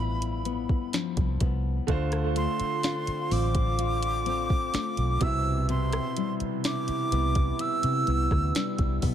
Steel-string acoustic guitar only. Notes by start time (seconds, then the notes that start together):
Already playing: G2 F3 B3 E4
0.46 B3
0.93 F3
1.41 B3
1.88 D3
2.36 A3
2.84 F4
3.31 C4
3.79 F4
4.26 C4
4.74 A3
5.21 C3
5.69 C3
6.17 G3
6.65 E4
7.12 B3
7.60 E4
8.07 B3
8.55 G3
9.03 B3